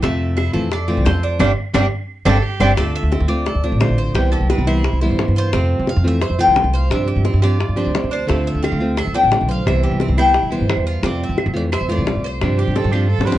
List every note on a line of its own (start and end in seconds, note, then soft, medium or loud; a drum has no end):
0.02 0.52 F2 medium
0.02 0.53 C3 medium
0.02 0.36 A3 medium
0.02 0.54 A3 medium
0.02 0.54 C4 medium
0.02 0.53 F4 medium
0.02 0.72 E5 medium
0.02 high bongo medium
0.37 0.53 E4 medium
0.37 high bongo medium
0.37 claves medium
0.53 0.95 F2 medium
0.53 0.70 E3 medium
0.53 0.70 A3 medium
0.53 0.70 C4 medium
0.53 0.70 F4 medium
0.53 0.87 A4 medium
0.70 1.08 D5 medium
0.70 muted nylon-string guitar stroke medium
0.70 high bongo medium
0.70 claves medium
0.88 1.06 E3 medium
0.88 1.05 A3 medium
0.88 1.05 C4 medium
0.88 1.05 F4 medium
0.97 1.05 C2 medium
1.05 1.39 F2 medium
1.05 1.39 A3 medium
1.05 1.38 C4 soft
1.05 1.40 F4 soft
1.05 1.22 A4 medium
1.05 1.39 C5 medium
1.05 high bongo medium
1.05 low bongo medium
1.23 1.38 D4 medium
1.39 1.52 G1 medium
1.39 1.51 G3 medium
1.39 1.51 C4 medium
1.39 1.51 D4 loud
1.39 1.51 D4 medium
1.39 1.51 D5 medium
1.39 1.51 F5 medium
1.39 1.51 G5 medium
1.39 low bongo loud
1.39 claves medium
1.74 1.87 G1 medium
1.74 1.85 G3 loud
1.74 1.86 G3 medium
1.74 1.85 C4 loud
1.74 1.86 C4 medium
1.74 1.85 D4 loud
1.74 1.86 D4 medium
1.74 1.86 D5 medium
1.74 1.85 F5 medium
1.74 1.85 G5 medium
1.74 low bongo loud
1.74 claves loud
2.25 2.39 G1 loud
2.25 2.37 G3 loud
2.25 2.37 G3 medium
2.25 2.37 C4 medium
2.25 2.37 C4 loud
2.25 2.37 D4 medium
2.25 2.37 D4 loud
2.25 2.44 A4 loud
2.25 2.37 D5 medium
2.25 2.37 F5 medium
2.25 2.37 G5 medium
2.25 low bongo loud
2.25 claves loud
2.43 2.78 G4 loud
2.60 2.73 G1 medium
2.60 2.71 G3 medium
2.60 2.72 G3 medium
2.60 2.71 C4 medium
2.60 2.72 C4 loud
2.60 2.71 D4 medium
2.60 2.72 D4 loud
2.60 2.72 D5 medium
2.60 2.72 F5 medium
2.60 2.72 G5 loud
2.60 low bongo loud
2.60 claves loud
2.77 3.02 D2 medium
2.77 3.29 D3 medium
2.77 3.11 A3 medium
2.77 3.29 A3 medium
2.77 3.29 C4 medium
2.77 3.27 F4 medium
2.77 2.95 D5 medium
2.77 high bongo medium
2.96 3.28 E5 loud
3.03 3.20 D2 medium
3.12 3.45 C4 medium
3.12 high bongo medium
3.21 3.53 D2 loud
3.28 3.46 A3 medium
3.28 3.46 C4 medium
3.28 3.45 F4 medium
3.28 3.80 D5 loud
3.46 3.63 A4 medium
3.46 muted nylon-string guitar stroke medium
3.46 high bongo medium
3.55 3.71 D2 medium
3.64 3.81 A3 medium
3.64 3.81 C4 medium
3.64 3.97 D4 medium
3.64 3.80 F4 medium
3.72 3.88 A1 medium
3.81 4.15 D3 soft
3.81 4.16 A3 medium
3.81 4.16 C4 soft
3.81 4.16 F4 medium
3.81 4.16 C5 medium
3.81 high bongo medium
3.81 low bongo medium
3.89 4.14 A1 medium
3.98 4.32 C5 medium
4.15 4.40 C2 medium
4.15 4.66 C3 medium
4.15 4.68 E3 medium
4.15 4.67 G3 medium
4.15 4.66 B3 medium
4.15 4.67 E4 medium
4.15 4.31 G4 medium
4.15 high bongo medium
4.32 4.49 G4 medium
4.32 4.48 A4 medium
4.32 high bongo soft
4.41 4.57 C2 medium
4.50 4.67 C4 medium
4.50 4.66 B4 medium
4.50 high bongo medium
4.58 4.91 C2 medium
4.67 4.83 E3 medium
4.67 4.84 G3 medium
4.67 4.84 B3 medium
4.67 4.83 E4 medium
4.67 5.00 E4 medium
4.67 4.99 C5 medium
4.67 high bongo soft
4.84 muted nylon-string guitar stroke medium
4.84 high bongo medium
4.93 5.09 C2 medium
5.01 5.17 E3 medium
5.01 5.18 G3 medium
5.01 5.19 B3 medium
5.01 5.18 E4 medium
5.01 5.35 C5 medium
5.01 high bongo soft
5.10 5.26 G2 medium
5.19 5.52 E3 soft
5.19 5.53 G3 soft
5.19 5.53 B3 medium
5.19 5.53 E4 medium
5.19 high bongo medium
5.19 low bongo medium
5.28 5.52 G2 medium
5.36 5.52 F4 medium
5.36 5.90 C5 loud
5.52 5.78 F2 medium
5.52 6.04 C3 medium
5.52 6.04 A3 medium
5.52 5.86 C4 medium
5.52 6.04 C4 medium
5.52 6.04 F4 medium
5.52 high bongo medium
5.79 5.95 F2 medium
5.87 6.06 F5 loud
5.87 high bongo medium
5.96 6.29 F2 medium
6.04 6.21 E3 medium
6.04 6.21 A3 medium
6.04 6.21 C4 medium
6.04 6.21 F4 medium
6.04 6.40 E5 loud
6.22 6.39 C5 medium
6.22 muted nylon-string guitar stroke medium
6.22 high bongo medium
6.30 6.47 F2 medium
6.39 6.56 E3 medium
6.39 6.56 A3 medium
6.39 6.56 C4 medium
6.39 6.56 F4 medium
6.39 6.73 F4 medium
6.39 6.74 G5 loud
6.47 6.63 C2 medium
6.56 6.90 A3 soft
6.56 6.91 C4 medium
6.56 6.91 F4 soft
6.56 high bongo medium
6.56 low bongo medium
6.64 6.89 C2 medium
6.74 7.07 C5 medium
6.74 6.92 F5 medium
6.90 7.15 G2 medium
6.90 7.42 C3 medium
6.90 7.44 F3 medium
6.90 7.43 C4 medium
6.90 7.42 D4 medium
6.90 7.41 G4 medium
6.90 7.44 E5 loud
6.90 high bongo medium
7.08 7.24 G4 medium
7.08 high bongo soft
7.16 7.33 G2 medium
7.25 7.42 C4 medium
7.25 high bongo medium
7.34 7.66 G2 medium
7.42 7.59 F3 medium
7.42 7.59 C4 medium
7.42 7.59 D4 medium
7.42 7.76 F4 medium
7.42 7.59 G4 medium
7.42 8.12 D5 medium
7.42 high bongo soft
7.59 muted nylon-string guitar stroke medium
7.59 high bongo medium
7.68 7.85 G2 medium
7.76 7.92 F3 medium
7.76 7.93 C4 medium
7.76 7.93 D4 medium
7.76 7.93 G4 medium
7.76 8.10 C5 medium
7.76 high bongo soft
7.86 8.02 D2 medium
7.94 8.27 C4 medium
7.94 8.28 D4 medium
7.94 8.28 G4 soft
7.94 high bongo medium
7.94 low bongo medium
8.03 8.27 D2 medium
8.11 8.28 D4 medium
8.11 8.47 C5 medium
8.27 8.53 D2 medium
8.27 8.79 D3 medium
8.27 8.79 A3 medium
8.27 8.62 A3 medium
8.27 8.81 C4 medium
8.27 8.79 F4 medium
8.27 high bongo medium
8.47 8.64 E5 medium
8.54 8.71 D2 medium
8.63 8.96 C4 medium
8.63 8.98 F5 medium
8.63 high bongo medium
8.63 claves medium
8.72 9.04 D2 loud
8.80 8.97 A3 medium
8.80 8.97 C4 medium
8.80 8.97 F4 medium
8.97 9.14 A4 medium
8.97 9.15 E5 loud
8.97 muted nylon-string guitar stroke medium
8.97 high bongo medium
8.97 claves medium
9.07 9.23 D2 medium
9.14 9.31 A3 medium
9.14 9.31 C4 medium
9.14 9.48 D4 medium
9.14 9.31 F4 medium
9.14 9.47 G5 loud
9.23 9.39 A1 medium
9.31 9.65 D3 soft
9.31 9.65 A3 soft
9.31 9.66 C4 soft
9.31 9.66 F4 medium
9.31 high bongo medium
9.31 low bongo medium
9.40 9.65 B1 medium
9.48 9.82 C5 medium
9.48 9.67 F5 medium
9.65 9.91 C2 medium
9.65 10.17 C3 medium
9.65 10.19 E3 medium
9.65 10.17 G3 medium
9.65 10.17 B3 medium
9.65 10.17 E4 medium
9.65 10.15 E5 medium
9.65 high bongo medium
9.65 claves medium
9.83 10.00 G4 medium
9.83 high bongo soft
9.91 10.08 C2 medium
10.00 10.17 C4 medium
10.00 high bongo medium
10.08 10.41 C2 medium
10.18 10.34 E3 medium
10.18 10.34 G3 medium
10.18 10.34 B3 medium
10.18 10.34 E4 medium
10.18 10.51 E4 medium
10.18 10.83 G5 loud
10.18 high bongo soft
10.18 claves medium
10.34 high bongo medium
10.43 10.59 C2 medium
10.50 10.66 E3 medium
10.50 10.66 G3 medium
10.50 10.68 B3 medium
10.50 10.68 E4 medium
10.50 10.85 C5 medium
10.50 high bongo soft
10.61 10.76 G2 medium
10.67 11.02 E3 soft
10.67 11.02 G3 soft
10.67 11.03 B3 medium
10.67 11.03 E4 medium
10.67 high bongo medium
10.67 low bongo medium
10.67 claves medium
10.77 11.02 E2 medium
10.87 11.03 F4 medium
11.02 11.28 F2 medium
11.02 11.53 C3 medium
11.02 11.54 A3 medium
11.02 11.54 C4 medium
11.02 11.37 C4 medium
11.02 11.53 F4 medium
11.02 11.21 D5 medium
11.02 high bongo medium
11.24 11.54 E5 medium
11.29 11.46 F2 medium
11.38 high bongo medium
11.38 claves medium
11.46 11.79 F2 loud
11.54 11.70 E3 medium
11.54 11.71 A3 medium
11.54 11.71 C4 medium
11.54 11.71 F4 medium
11.54 11.61 D5 medium
11.72 11.89 C5 medium
11.72 11.90 E5 loud
11.72 muted nylon-string guitar stroke medium
11.72 high bongo medium
11.72 claves medium
11.81 11.97 F2 medium
11.89 12.07 E3 medium
11.89 12.06 A3 medium
11.89 12.06 C4 medium
11.89 12.05 F4 medium
11.89 12.23 F4 medium
11.89 12.26 D5 medium
11.98 12.14 C2 medium
12.07 12.40 A3 soft
12.07 12.41 C4 soft
12.07 12.41 F4 medium
12.07 high bongo medium
12.07 low bongo medium
12.15 12.40 C2 medium
12.24 12.57 C5 medium
12.24 13.38 C5 medium
12.41 12.65 G2 medium
12.41 12.92 C3 medium
12.41 12.92 F3 medium
12.41 12.92 C4 medium
12.41 12.92 D4 medium
12.41 12.91 G4 medium
12.41 high bongo medium
12.41 claves medium
12.57 12.77 G4 medium
12.57 12.75 G4 medium
12.57 high bongo soft
12.67 12.83 G2 medium
12.75 12.92 C4 medium
12.75 12.93 A4 medium
12.75 high bongo medium
12.84 13.16 G2 loud
12.91 13.08 F3 medium
12.91 13.08 C4 medium
12.91 13.09 D4 medium
12.91 13.26 F4 medium
12.91 13.08 G4 medium
12.91 13.09 G4 medium
12.91 claves medium
13.08 13.27 A4 medium
13.08 muted nylon-string guitar stroke medium
13.18 13.34 G2 medium
13.18 low bongo medium
13.25 13.38 F3 medium
13.25 13.38 C4 medium
13.25 13.38 D4 medium
13.25 13.38 G4 medium
13.25 13.38 B4 medium
13.25 13.38 C5 medium
13.32 13.38 D2 medium
13.32 low bongo medium